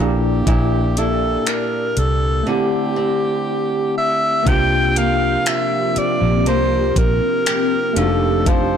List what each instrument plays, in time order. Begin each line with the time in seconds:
Already playing: fingered electric bass A#1, nylon-string guitar A#2 D4 A4, tine electric piano A#3 D4
0.00 tine electric piano E4 G#4, alto saxophone G4
0.08 tine electric piano G4
0.47 fingered electric bass A#1, nylon-string guitar A#2 E4, kick, closed hi-hat
0.97 nylon-string guitar D4 E4, alto saxophone A4, closed hi-hat
1.47 nylon-string guitar D4, alto saxophone A#4, finger snap, closed hi-hat
1.97 fingered electric bass C2, alto saxophone A4, closed hi-hat
2.43 nylon-string guitar D3, tine electric piano A3 C4
2.49 tine electric piano E4 G4, alto saxophone G4
2.96 nylon-string guitar C4
3.98 alto saxophone E5
4.43 fingered electric bass C2, nylon-string guitar C3, ambient pad F3 A#3 G4, tine electric piano A#3 D4, kick, closed hi-hat
4.47 ambient pad C4, tine electric piano F4, alto saxophone G5
4.52 tine electric piano G4
4.96 nylon-string guitar A#3, alto saxophone F5, closed hi-hat
5.46 nylon-string guitar F4, alto saxophone E5, finger snap, closed hi-hat
5.96 alto saxophone D5, muted fingered electric bass stroke, closed hi-hat
6.22 fingered electric bass A#1
6.46 fingered electric bass C2, nylon-string guitar A#3, alto saxophone C5, closed hi-hat
6.96 fingered electric bass A#1, alto saxophone A#4, kick, closed hi-hat
7.46 nylon-string guitar G4, finger snap, closed hi-hat
7.93 fingered electric bass F1, ambient pad D#3 A3 G4 D5, nylon-string guitar F3, tine electric piano A3 D4, closed hi-hat
7.98 tine electric piano D#4 F#4, alto saxophone A4
8.08 tine electric piano G4
8.46 nylon-string guitar F3, alto saxophone C5, kick, closed hi-hat